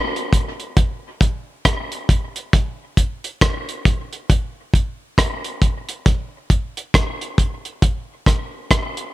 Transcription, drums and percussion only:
0.16 closed hi-hat soft
0.33 kick medium
0.33 closed hi-hat medium
0.60 closed hi-hat soft
0.77 kick loud
0.77 closed hi-hat medium
1.21 kick medium
1.21 closed hi-hat medium
1.65 kick loud
1.65 cross-stick loud
1.65 closed hi-hat loud
1.92 closed hi-hat soft
2.09 kick loud
2.09 closed hi-hat medium
2.36 closed hi-hat medium
2.53 kick loud
2.53 closed hi-hat medium
2.97 kick medium
2.97 closed hi-hat medium
3.24 closed hi-hat soft
3.41 kick loud
3.41 cross-stick loud
3.41 closed hi-hat medium
3.69 closed hi-hat soft
3.85 kick medium
3.85 closed hi-hat medium
4.13 closed hi-hat soft
4.30 kick loud
4.30 closed hi-hat medium
4.74 kick medium
4.74 closed hi-hat medium
5.18 kick loud
5.18 cross-stick loud
5.18 closed hi-hat medium
5.44 closed hi-hat medium
5.62 kick medium
5.62 closed hi-hat medium
5.89 closed hi-hat medium
6.06 kick loud
6.06 closed hi-hat medium
6.50 kick medium
6.50 closed hi-hat medium
6.77 closed hi-hat medium
6.94 kick loud
6.94 cross-stick medium
6.94 closed hi-hat medium
7.21 closed hi-hat soft
7.38 kick medium
7.38 closed hi-hat medium
7.65 closed hi-hat soft
7.82 kick loud
7.82 closed hi-hat medium
8.26 kick medium
8.26 cross-stick medium
8.26 closed hi-hat medium
8.71 kick medium
8.71 cross-stick loud
8.71 closed hi-hat loud
8.97 closed hi-hat medium

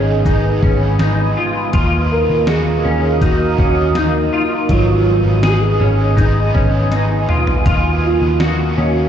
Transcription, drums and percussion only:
0.26 kick medium
0.26 closed hi-hat medium
0.63 kick medium
0.99 snare medium
0.99 closed hi-hat medium
1.73 kick loud
1.73 closed hi-hat medium
2.47 snare loud
2.47 closed hi-hat medium
3.21 kick medium
3.21 closed hi-hat medium
3.58 kick medium
3.95 snare medium
3.95 closed hi-hat medium
4.69 kick loud
4.69 closed hi-hat medium
5.43 snare loud
5.43 closed hi-hat medium
6.18 kick medium
6.18 closed hi-hat medium
6.55 kick medium
6.92 snare soft
6.92 closed hi-hat medium
7.29 mid tom medium
7.47 floor tom medium
7.66 kick loud
7.66 closed hi-hat medium
8.40 snare loud
8.40 closed hi-hat medium

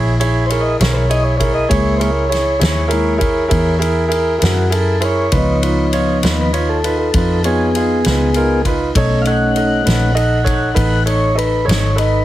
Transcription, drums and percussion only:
0.21 ride medium
0.50 ride medium
0.81 snare loud
0.81 ride medium
1.11 ride medium
1.40 kick medium
1.40 ride medium
1.71 kick loud
1.71 ride medium
2.01 ride medium
2.32 snare soft
2.32 ride medium
2.61 snare loud
2.61 ride medium
2.91 ride medium
3.21 kick medium
3.21 ride medium
3.51 kick loud
3.51 ride medium
3.82 ride medium
4.12 ride medium
4.42 snare loud
4.42 ride medium
4.72 ride medium
5.02 ride medium
5.32 kick loud
5.32 ride medium
5.63 ride medium
5.93 ride medium
6.23 snare loud
6.23 ride medium
6.54 ride medium
6.84 ride medium
7.14 kick loud
7.14 ride medium
7.44 ride medium
7.75 ride medium
8.05 snare loud
8.05 ride medium
8.34 ride medium
8.65 kick medium
8.65 ride medium
8.95 kick loud
8.95 ride medium
9.25 ride medium
9.56 ride medium
9.87 snare loud
9.87 ride medium
10.17 ride medium
10.46 kick medium
10.46 ride medium
10.76 kick loud
10.76 ride medium
11.07 ride medium
11.38 ride medium
11.69 snare loud
11.69 ride medium
11.98 ride medium

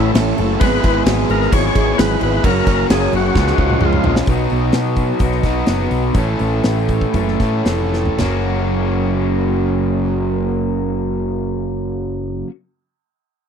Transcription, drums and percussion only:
0.15 snare loud
0.15 crash medium
0.38 crash medium
0.61 kick loud
0.61 crash medium
0.83 kick medium
0.83 crash medium
1.06 snare loud
1.06 crash medium
1.30 crash medium
1.42 snare soft
1.52 kick medium
1.52 crash loud
1.75 kick medium
1.75 crash medium
1.99 snare loud
1.99 crash loud
2.21 crash medium
2.44 kick loud
2.44 crash medium
2.67 kick medium
2.67 crash medium
2.90 snare loud
2.90 crash loud
3.13 crash medium
3.35 kick medium
3.35 snare medium
3.47 snare medium
3.58 kick medium
3.70 mid tom medium
3.81 mid tom loud
3.93 mid tom medium
4.04 floor tom loud
4.16 snare loud
4.26 kick loud
4.26 open hi-hat medium
4.50 open hi-hat soft
4.72 snare loud
4.72 open hi-hat medium
4.96 kick medium
4.96 open hi-hat soft
5.19 kick loud
5.19 open hi-hat medium
5.32 snare soft
5.43 kick medium
5.43 snare soft
5.43 open hi-hat soft
5.66 snare medium
5.66 open hi-hat medium
5.91 open hi-hat soft
6.14 kick loud
6.14 open hi-hat medium
6.39 open hi-hat soft
6.64 snare loud
6.64 open hi-hat medium
6.88 kick medium
6.88 open hi-hat soft
7.01 kick medium
7.14 kick medium
7.14 open hi-hat medium
7.28 snare soft
7.40 kick medium
7.40 snare soft
7.40 open hi-hat soft
7.65 snare medium
7.65 open hi-hat medium
7.93 snare soft
8.05 floor tom medium
8.18 snare medium
8.18 floor tom medium
8.18 crash medium

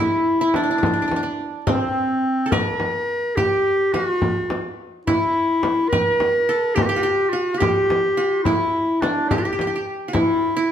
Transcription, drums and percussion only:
0.54 frame drum medium
0.83 frame drum medium
1.11 frame drum medium
1.67 frame drum medium
2.52 frame drum medium
2.80 frame drum soft
3.37 frame drum medium
3.94 frame drum medium
4.22 frame drum medium
4.50 frame drum medium
5.07 frame drum medium
5.63 frame drum medium
5.93 frame drum medium
6.20 frame drum medium
6.77 frame drum medium
7.62 frame drum medium
7.90 frame drum medium
8.45 frame drum medium
9.02 frame drum medium
9.31 frame drum medium
9.59 frame drum medium
10.14 frame drum medium

